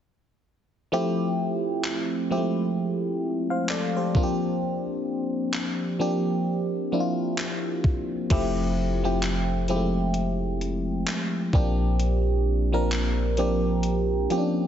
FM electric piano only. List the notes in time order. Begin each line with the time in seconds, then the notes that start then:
0.92 F3 A3 C4 E4 G4
2.30 F3 G#3 C4 E4 G4
2.37 A3
3.50 C5 F5
3.70 A4 D5
3.96 G4 C5
4.15 F3 A#3 C4 D4 F4
4.23 G4
5.99 F3 A#3 C4 D4 G4
6.92 F3 A#3 C4 D4 E4
7.00 F4
8.30 F3 A3 C4 E4 G4
9.04 F3 A3 C4 E4 G4
9.69 F3 G#3 C4 E4 G4
9.76 A3
11.54 F3 A#3 C4 D4 G4
12.72 F3 A#3 C4 D4 A#4
13.38 F3 A#3 C4 D4 G4
14.30 F3 A#3 C4 C#4 G4
14.38 D4